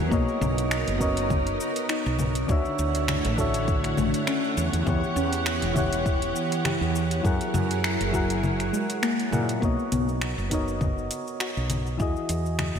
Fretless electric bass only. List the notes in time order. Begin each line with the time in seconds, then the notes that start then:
0.11 B1
0.41 B1
0.88 F#1
2.06 B1
2.49 D2
2.79 D2
3.25 A1
3.98 A1
4.57 E2
4.73 E2
4.87 E2
5.16 E2
5.62 E1
6.81 E2
7.25 F#2
7.54 F#2
8.01 F#1
9.32 A#2
9.62 B1
9.92 B1
10.38 F#1
11.57 B1
12.00 E2
12.29 E2
12.75 E1